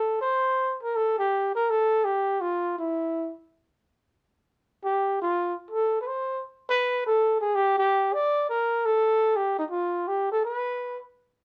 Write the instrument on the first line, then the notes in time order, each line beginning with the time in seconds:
trumpet
Already playing: A4
0.21 C5
0.83 A#4
0.96 A4
1.18 G4
1.55 A#4
1.70 A4
2.05 G4
2.41 F4
2.79 E4
4.84 G4
5.22 F4
5.71 A4
6.01 B4
6.07 C5
6.69 B4
7.06 A4
7.41 G#4
7.55 G4
7.78 G4
8.13 D5
8.49 A#4
8.85 A4
9.36 G4
9.59 D#4
9.70 F4
10.08 G4
10.32 A4
10.45 B4